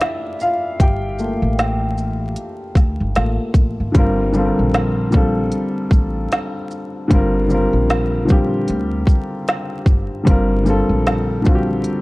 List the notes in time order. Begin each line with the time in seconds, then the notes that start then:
Already playing: D4 E4 F4 D5 E5 F5
0.01 snare, closed hi-hat
0.40 F4 F5, shaker
0.80 G1 G4 G5, kick, closed hi-hat
1.19 A3 A#3 F4, shaker
1.42 A1
1.59 snare, closed hi-hat
1.98 shaker
2.36 closed hi-hat
2.75 D2, kick, snare, closed hi-hat, shaker
3.00 G1
3.15 A1 A3 A#3 F4, snare, closed hi-hat
3.54 A1, kick, closed hi-hat, shaker
3.80 G#1
3.92 G1 D3 G3 C4, kick, closed hi-hat
3.98 F4 A#4
4.32 D3 G3 C4, shaker
4.37 F4 A4
4.45 A#4
4.59 A#1
4.74 snare, closed hi-hat
5.10 D3 G3 C4, kick, shaker
5.15 F4 A4
5.52 closed hi-hat
5.91 A1, kick, shaker
6.32 snare, closed hi-hat
6.71 shaker
7.08 G1 D3 G3 C4, kick, closed hi-hat
7.13 F4 A#4
7.48 D3 G3 C4, shaker
7.52 F4 A#4
7.73 A#1
7.90 snare, closed hi-hat
8.25 D3 G3 C4, shaker
8.30 F4 G4, kick
8.68 D2, closed hi-hat
9.07 kick, shaker
9.48 snare, closed hi-hat
9.86 G1, kick, shaker
10.23 G1 D3 G3 C4, kick, closed hi-hat
10.28 F4 A#4
10.63 D3 G3 C4, shaker
10.68 F4 A4
10.89 A#1
11.07 snare, closed hi-hat
11.42 D3 G3 C4, shaker
11.46 F4 F#4, kick
11.55 G4
11.84 closed hi-hat